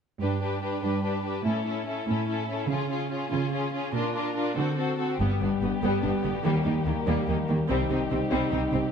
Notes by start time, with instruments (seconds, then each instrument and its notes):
0.20 cello section G2, viola section D4, violin section G4 B4
0.41 viola section D4, violin section G4 B4
0.62 viola section D4, violin section G4 B4
0.81 cello section G2, viola section D4, violin section G4 B4
1.02 viola section D4, violin section G4 B4
1.22 viola section D4, violin section G4 B4
1.43 cello section A2, viola section C#4, violin section E4
1.47 violin section A4
1.64 viola section C#4, violin section E4 A4
1.86 viola section C#4, violin section E4 A4
2.07 cello section A2, viola section C#4, violin section E4 A4
2.28 viola section C#4, violin section E4 A4
2.49 viola section C#4, violin section E4 A4
2.69 cello section C#3, viola section C#4, violin section F4 G#4
2.90 viola section C#4, violin section F4 G#4
3.11 viola section C#4, violin section F4 G#4
3.29 cello section C#3, viola section C#4, violin section F4 G#4
3.52 viola section C#4, violin section F4 G#4
3.73 viola section C#4, violin section F4 G#4
3.93 cello section A#2, viola section D4, violin section F4 A#4
4.13 viola section D4, violin section F4 A#4
4.35 viola section D4, violin section F4 A#4
4.56 cello section D3, viola section C4, violin section F#4 A4
4.77 viola section C4, violin section F#4 A4
4.98 viola section C4, violin section F#4 A4
5.19 double bass section G1, cello section G2, harp G2, violin section G3 G4, french horn section G3 B3, viola section B3
5.41 double bass section G1, cello section G2, viola section B3, harp B3, violin section D4
5.61 double bass section G1, cello section G2, viola section B3, violin section B3, harp G4
5.83 double bass section G1, cello section G2, violin section G3, viola section B3, harp B4
6.03 double bass section G1, cello section G2, viola section B3, violin section D4, harp G4
6.22 double bass section G1, cello section G2, violin section B3, viola section B3, harp B3
6.44 double bass section D#2, cello section D#3, harp D#3, violin section G3, viola section A#3, french horn section A#3
6.65 double bass section D#2, cello section D#3, viola section A#3, violin section D#4, harp D#4
6.86 double bass section D#2, cello section D#3, viola section A#3, violin section A#3, harp A#4
7.06 double bass section D#2, cello section D#3, violin section G3, viola section A#3, harp D#5
7.27 double bass section D#2, cello section D#3, viola section A#3, violin section D#4, harp A#4
7.48 double bass section D#2, cello section D#3, viola section A#3, violin section A#3, harp D#4
7.68 double bass section C2, cello section C3, harp C3, french horn section G3 D#4, violin section G3 G4, viola section C4
7.89 double bass section C2, cello section C3, viola section C4, harp C4, violin section D#4
8.10 double bass section C2, cello section C3, violin section C4, viola section C4, harp G4
8.31 double bass section C2, cello section C3, violin section G3, viola section C4
8.52 double bass section C2, cello section C3, viola section C4, violin section D#4, harp G4
8.72 double bass section C2, cello section C3, harp C4, viola section C4, violin section C4